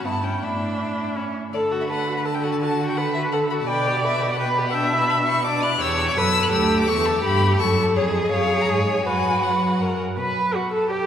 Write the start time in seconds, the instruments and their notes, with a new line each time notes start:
0.04 cello G2, viola B3, violin E4 A5
0.23 viola C#4, violin G5
0.41 cello A2, viola D4, violin E4 E5
1.16 viola C#4, violin E4
1.53 cello D3, viola A4, violin A4 D5
1.71 violin F#4
1.81 violin E5
1.89 violin A4 F#5, viola B4
2.08 violin F#4
2.17 violin B5
2.25 violin A4 A5, viola A4
2.34 violin G5
2.43 violin F#4 F#5
2.52 violin A5
2.61 viola F#4, violin A4 A5
2.80 violin F#4
2.88 violin G5
2.97 violin A4 F#5, viola B4
3.14 violin F#4 E5
3.32 viola A4, violin A4 F#5
3.50 violin F#4 B5
3.60 violin A5
3.67 cello B2, violin B4 G5, viola D5
3.87 violin G4
3.96 violin D5
4.04 violin B4 E5
4.22 violin G4
4.32 violin F#5
4.40 viola B4, violin B4 G5
4.58 violin G4
4.67 violin F#5
4.74 violin D4 G5, viola E5
4.92 violin E4
5.01 violin A5
5.10 violin D4 B5
5.27 violin E4 C#6
5.44 violin D4 D6, viola D5
5.62 violin E4 F#6
5.79 cello E2, violin G4 E6, viola C#5
6.08 violin D6
6.16 cello F#2, violin A4 E6, viola B4
6.43 violin F#6
6.52 cello D2, viola G4, violin E6
6.79 violin D6
6.87 cello E2, violin G4 C#6, viola A4
7.05 violin A5
7.24 cello G2, viola G4, violin B5
7.59 cello F#2, violin A4 C#6, viola A4
7.96 cello F2, violin G#4 C#5, viola G#4
8.24 violin D#5
8.32 cello F#2, violin C#5 F5
8.61 violin A#5
8.68 cello G#2, violin G#5
9.05 cello F#2, viola F#4, violin B4 G#5
9.43 cello F#3, violin F#5
9.80 cello F#2, violin A#4
10.17 cello B2, violin B4, viola B4
10.54 violin F#4 D5, viola F#4
10.72 viola A4, violin A4
10.90 viola G4, violin G4 D5